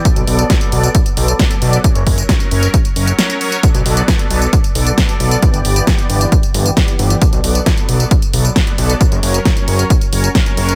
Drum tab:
HH |xxoxxxoxxxoxxxox|xxoxxxoxxxoxxxox|xxoxxxoxxxoxxxox|xxoxxxoxxxoxxxox|
TB |xx-xxx-xxx-xxx-x|xx-xxx-xxx-xxx-x|xx-xxx-xxx-xxx-x|xx-xxx-xxx-xxx-x|
SD |----o-------o---|----o-------o---|----o-------o---|----o-------o---|
BD |o---o---o---o---|o-o-o---o-------|o---o---o---o---|o---o---o---o---|

HH |xxoxxxoxxxoxxxox|xxoxxxoxxxoxxxox|
TB |xx-xxx-xxx-xxx-x|xx-xxx-xxx-xxx-x|
SD |----o-------o---|----o-------o---|
BD |o---o---o---o---|o---o---o---o---|